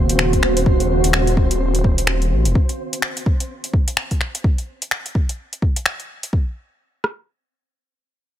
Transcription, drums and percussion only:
0.09 closed hi-hat
0.19 finger snap
0.33 kick, closed hi-hat
0.43 finger snap
0.57 closed hi-hat
0.66 kick
0.80 closed hi-hat
1.04 closed hi-hat
1.13 finger snap
1.27 closed hi-hat
1.37 kick
1.51 closed hi-hat
1.75 closed hi-hat
1.84 kick
1.98 closed hi-hat
2.07 finger snap
2.22 closed hi-hat
2.45 closed hi-hat
2.55 kick
2.69 closed hi-hat
2.93 closed hi-hat
3.02 finger snap
3.17 closed hi-hat
3.26 kick
3.40 closed hi-hat
3.64 closed hi-hat
3.73 kick
3.88 closed hi-hat
3.97 finger snap
4.11 kick, closed hi-hat
4.21 finger snap
4.35 closed hi-hat
4.44 kick
4.58 closed hi-hat
4.82 closed hi-hat
4.91 finger snap
5.06 closed hi-hat
5.15 kick
5.29 closed hi-hat
5.53 closed hi-hat
5.62 kick
5.76 closed hi-hat
5.86 finger snap
6.00 closed hi-hat
6.23 closed hi-hat
6.33 kick
7.04 cross-stick

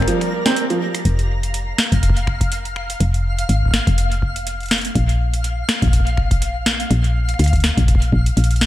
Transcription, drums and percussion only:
0.02 finger snap
0.08 closed hi-hat
0.21 finger snap, closed hi-hat
0.46 snare, closed hi-hat
0.56 closed hi-hat
0.70 closed hi-hat
0.95 finger snap, closed hi-hat
1.05 kick, closed hi-hat
1.19 closed hi-hat
1.43 closed hi-hat
1.54 closed hi-hat
1.78 finger snap, snare
1.92 kick, closed hi-hat
1.97 kick
2.03 kick, closed hi-hat
2.10 kick
2.17 closed hi-hat
2.27 finger snap, kick
2.41 kick, closed hi-hat
2.52 closed hi-hat
2.65 closed hi-hat
2.76 finger snap
2.90 closed hi-hat
3.00 closed hi-hat
3.14 closed hi-hat
3.38 closed hi-hat
3.49 closed hi-hat
3.63 kick
3.65 kick
3.68 kick
3.71 kick, snare
3.87 kick, closed hi-hat
3.98 closed hi-hat
4.12 closed hi-hat
4.22 kick
4.36 closed hi-hat
4.47 closed hi-hat
4.60 closed hi-hat
4.63 closed hi-hat
4.66 closed hi-hat
4.68 finger snap, snare, closed hi-hat
4.71 closed hi-hat
4.75 closed hi-hat
4.78 closed hi-hat
4.81 closed hi-hat
4.85 closed hi-hat
4.95 kick, closed hi-hat
5.09 closed hi-hat
5.34 closed hi-hat
5.44 closed hi-hat
5.69 finger snap, snare
5.82 kick, closed hi-hat
5.88 kick
5.93 kick, closed hi-hat
6.00 kick
6.07 closed hi-hat
6.17 finger snap, kick
6.31 kick, closed hi-hat
6.42 closed hi-hat
6.66 finger snap, snare, closed hi-hat
6.80 closed hi-hat
6.91 closed hi-hat
7.04 closed hi-hat
7.29 finger snap, closed hi-hat
7.34 finger snap
7.39 finger snap, closed hi-hat
7.44 finger snap, closed hi-hat
7.48 closed hi-hat
7.53 kick, closed hi-hat
7.56 closed hi-hat
7.60 finger snap, snare, closed hi-hat
7.77 kick, closed hi-hat
7.83 kick
7.88 kick, closed hi-hat
7.95 kick
8.02 closed hi-hat
8.13 kick
8.26 closed hi-hat
8.37 closed hi-hat
8.44 closed hi-hat
8.51 closed hi-hat
8.56 closed hi-hat
8.61 finger snap, snare

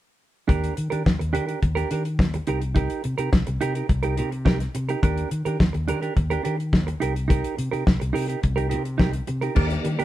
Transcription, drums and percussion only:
0.49 kick, closed hi-hat
0.64 closed hi-hat
0.77 closed hi-hat
0.92 closed hi-hat
1.06 kick, snare
1.21 closed hi-hat
1.35 closed hi-hat
1.49 closed hi-hat
1.62 kick, closed hi-hat
1.77 closed hi-hat
1.91 closed hi-hat
2.05 closed hi-hat
2.19 kick, snare
2.34 closed hi-hat
2.47 closed hi-hat
2.62 closed hi-hat
2.76 kick, closed hi-hat
2.90 closed hi-hat
3.04 closed hi-hat
3.18 closed hi-hat
3.33 kick, snare
3.47 closed hi-hat
3.61 closed hi-hat
3.75 closed hi-hat
3.89 kick, closed hi-hat
4.03 closed hi-hat
4.17 closed hi-hat
4.32 closed hi-hat
4.46 kick, snare
4.60 snare, closed hi-hat
4.75 closed hi-hat
4.89 closed hi-hat
5.03 kick, closed hi-hat
5.17 closed hi-hat
5.31 closed hi-hat
5.46 closed hi-hat
5.60 kick, snare
5.74 closed hi-hat
5.88 closed hi-hat
6.02 closed hi-hat
6.17 kick, closed hi-hat
6.31 closed hi-hat
6.45 closed hi-hat
6.60 closed hi-hat
6.73 kick, snare
6.88 closed hi-hat
7.02 closed hi-hat
7.16 closed hi-hat
7.30 kick, closed hi-hat
7.44 closed hi-hat
7.59 closed hi-hat
7.73 closed hi-hat
7.87 kick, snare
8.01 closed hi-hat
8.16 open hi-hat
8.30 closed hi-hat
8.43 kick, closed hi-hat
8.58 closed hi-hat
8.71 closed hi-hat
8.85 closed hi-hat
9.00 kick, snare
9.13 closed hi-hat
9.27 closed hi-hat
9.42 closed hi-hat
9.56 kick, crash
9.70 closed hi-hat
9.85 closed hi-hat
9.99 closed hi-hat

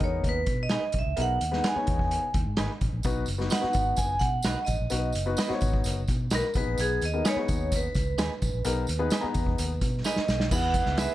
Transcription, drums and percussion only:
0.00 kick, closed hi-hat
0.24 kick, closed hi-hat
0.46 kick, closed hi-hat
0.69 snare, closed hi-hat
0.92 kick, closed hi-hat
1.17 closed hi-hat
1.41 closed hi-hat
1.53 snare
1.64 snare, closed hi-hat
1.87 kick, closed hi-hat
1.99 kick
2.11 closed hi-hat
2.34 kick, closed hi-hat
2.57 snare, closed hi-hat
2.81 kick, closed hi-hat
3.03 kick, closed hi-hat, tambourine
3.26 closed hi-hat, tambourine
3.40 snare
3.50 snare, closed hi-hat, tambourine
3.63 snare
3.73 kick, closed hi-hat, tambourine
3.96 kick, closed hi-hat, tambourine
4.19 kick, closed hi-hat, tambourine
4.43 snare, closed hi-hat, tambourine
4.66 kick, closed hi-hat, tambourine
4.90 closed hi-hat, tambourine
5.13 closed hi-hat, tambourine
5.37 snare, closed hi-hat, tambourine
5.51 snare
5.61 kick, closed hi-hat, tambourine
5.73 kick
5.84 closed hi-hat, tambourine
6.08 kick, closed hi-hat, tambourine
6.30 snare, closed hi-hat, tambourine
6.54 kick, closed hi-hat, tambourine
6.78 closed hi-hat, tambourine
7.01 closed hi-hat, tambourine
7.25 snare, closed hi-hat, tambourine
7.48 kick, closed hi-hat, tambourine
7.72 kick, closed hi-hat, tambourine
7.94 kick, closed hi-hat, tambourine
8.18 snare, closed hi-hat, tambourine
8.42 kick, closed hi-hat, tambourine
8.65 closed hi-hat, tambourine
8.87 closed hi-hat, tambourine
9.10 snare, closed hi-hat, tambourine
9.34 kick, closed hi-hat, tambourine
9.47 kick
9.58 closed hi-hat, tambourine
9.81 kick, closed hi-hat, tambourine
10.04 snare, tambourine
10.16 snare
10.28 snare, tambourine
10.40 snare
10.51 kick, crash, tambourine
10.74 kick, closed hi-hat, tambourine
10.86 snare
10.97 snare, closed hi-hat, tambourine

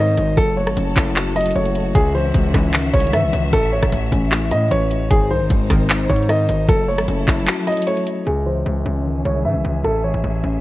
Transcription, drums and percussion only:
0.17 closed hi-hat
0.37 kick, closed hi-hat
0.67 cross-stick
0.77 closed hi-hat
0.96 kick, clap, closed hi-hat
1.16 clap, closed hi-hat
1.36 closed hi-hat
1.41 closed hi-hat
1.46 closed hi-hat
1.51 closed hi-hat
1.56 closed hi-hat
1.65 closed hi-hat
1.75 closed hi-hat
1.95 kick, closed hi-hat
2.34 kick, closed hi-hat
2.54 kick, cross-stick, closed hi-hat
2.74 clap, closed hi-hat
2.94 kick, closed hi-hat
3.00 closed hi-hat
3.07 closed hi-hat
3.13 cross-stick, closed hi-hat
3.33 closed hi-hat
3.53 kick, closed hi-hat
3.83 kick, cross-stick
3.92 closed hi-hat
4.12 kick, closed hi-hat
4.32 clap, closed hi-hat
4.51 closed hi-hat
4.71 closed hi-hat
4.91 closed hi-hat
5.11 kick, closed hi-hat
5.50 kick, closed hi-hat
5.70 kick, cross-stick, closed hi-hat
5.90 clap, closed hi-hat
6.09 kick, closed hi-hat
6.16 closed hi-hat
6.23 closed hi-hat
6.29 cross-stick, closed hi-hat
6.49 closed hi-hat
6.69 kick, closed hi-hat
6.98 cross-stick
7.08 closed hi-hat
7.28 kick, clap, closed hi-hat
7.48 clap, closed hi-hat
7.67 closed hi-hat
7.72 closed hi-hat
7.77 closed hi-hat
7.82 closed hi-hat
7.87 closed hi-hat
7.97 closed hi-hat
8.07 closed hi-hat

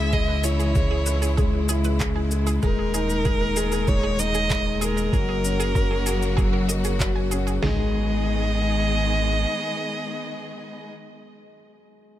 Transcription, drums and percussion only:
0.13 kick, shaker
0.44 shaker
0.60 shaker
0.75 kick, shaker
1.06 shaker
1.22 shaker
1.38 kick, shaker
1.69 shaker
1.84 shaker
2.00 kick, clap, shaker
2.31 shaker
2.47 shaker
2.62 kick, shaker
2.94 shaker
3.10 shaker
3.25 kick, shaker
3.56 shaker
3.72 shaker
3.88 kick, shaker
4.19 shaker
4.35 shaker
4.50 kick, clap, shaker
4.82 shaker
4.97 shaker
5.13 kick, shaker
5.45 shaker
5.60 shaker
5.75 kick, shaker
6.06 shaker
6.22 shaker
6.38 kick, shaker
6.69 shaker
6.84 shaker
7.00 kick, clap, shaker
7.32 shaker
7.47 shaker
7.63 snare, floor tom, open hi-hat

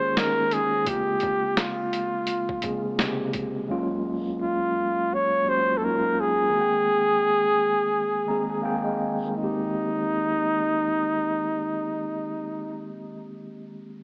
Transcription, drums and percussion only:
0.17 snare, closed hi-hat
0.51 closed hi-hat
0.86 kick, closed hi-hat
1.20 kick, closed hi-hat
1.57 snare, closed hi-hat
1.93 closed hi-hat
2.27 closed hi-hat
2.49 kick
2.62 kick, closed hi-hat
2.99 snare, closed hi-hat
3.33 kick, closed hi-hat

